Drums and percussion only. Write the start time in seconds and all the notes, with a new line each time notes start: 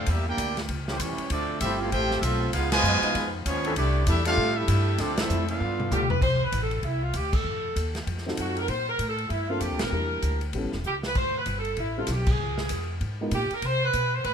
0.06 kick, ride
0.38 kick, hi-hat pedal, ride
0.57 snare, ride
0.69 kick, ride
0.88 snare
1.00 kick, hi-hat pedal, ride
1.18 ride
1.30 kick, ride
1.61 kick, hi-hat pedal, ride
1.92 kick, ride
2.11 snare
2.23 kick, hi-hat pedal, ride
2.53 kick, ride
2.72 snare, ride
2.84 hi-hat pedal
3.03 ride
3.15 kick, ride
3.46 kick, hi-hat pedal, ride
3.65 ride
3.76 kick, ride
4.07 kick, hi-hat pedal, ride
4.25 ride
4.38 kick
4.68 kick, hi-hat pedal, ride
4.98 kick, snare, ride
5.17 snare, ride
5.30 hi-hat pedal
5.48 ride
5.80 mid tom
5.91 hi-hat pedal, mid tom
6.10 floor tom
6.22 kick, crash
6.52 kick, hi-hat pedal, ride
6.71 ride
6.83 kick, ride
7.14 kick, hi-hat pedal, ride
7.33 kick, crash
7.76 kick, hi-hat pedal, ride
7.95 snare, ride
8.07 kick, ride
8.18 snare
8.28 snare
8.37 kick, hi-hat pedal, ride
8.57 ride
8.68 kick, ride
8.99 kick, hi-hat pedal, ride
9.18 ride
9.30 kick, ride
9.61 kick, hi-hat pedal, ride
9.79 snare, ride
10.22 kick, hi-hat pedal, ride
10.41 ride
10.53 kick, ride
10.72 snare
10.84 hi-hat pedal
11.03 snare
11.15 kick, crash
11.46 kick, hi-hat pedal, ride
11.65 ride
11.77 kick, ride
12.07 kick, snare, hi-hat pedal, ride
12.26 kick, crash
12.58 snare
12.69 kick, hi-hat pedal, ride
13.01 kick, ride
13.31 kick, hi-hat pedal, ride
13.51 ride
13.62 kick, ride
13.93 kick, hi-hat pedal, ride
14.24 kick, ride